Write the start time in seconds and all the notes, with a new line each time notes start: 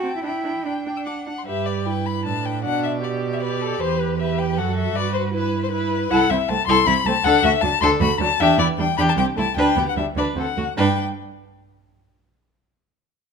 Already playing: F#4
0.03 C4 G5 A5
0.16 E4
0.22 D4 E4 G5 B5
0.43 D4 G5 B5
0.65 D4 G5 B5
0.85 D4 G5
0.97 E6
1.05 D4 F#5 D6
1.26 D4 F#5
1.38 C6
1.46 G2 G4 B4 E5
1.66 D5
1.86 E4 B4 G5
2.06 B5
2.25 A2 D4 A5
2.46 G5
2.64 B2 D4 D5 F#5
2.84 E5
3.03 G4 D5
3.33 E5
3.41 B4 D5
3.61 A4
3.79 E2 B4 C5
4.00 B4
4.18 G4 B4 E5
4.39 G5
4.57 F#2 F#4 A4 F#5
4.77 E5
4.95 G2 B4 D5
5.14 C5
5.33 E4 B4
5.63 C5
5.72 E4 B4
6.10 C2 E4 A4 F#5
6.29 C2 C4 E4 E5
6.48 C2 A3 C4 A5
6.68 C2 E4 A4 C6
6.86 C2 C4 E4 B5
7.06 C2 A3 C4 A5
7.24 D2 D4 A4 F#5
7.43 D2 A3 F#4 E5
7.61 D2 F#3 D4 A5
7.82 D2 D4 A4 C6
8.01 D2 A3 F#4 B5
8.19 D2 F#3 D4 A5
8.39 E2 D4 G4 E5
8.58 E2 B3 E4 D5
8.78 E2 G3 D4 G5
8.97 E2 D4 G4 B5
9.09 A5
9.17 C2 C4 G4 G5
9.36 C2 A3 E4 A5
9.56 D2 D4 B4 G5
9.76 D2 B3 G4
9.89 F#5
9.96 D2 G3 D4 E5
10.16 D2 D4 B4 D5
10.35 D2 C4 A4 F#5
10.57 D2 A3 F#4
10.77 G2 D4 B4 G5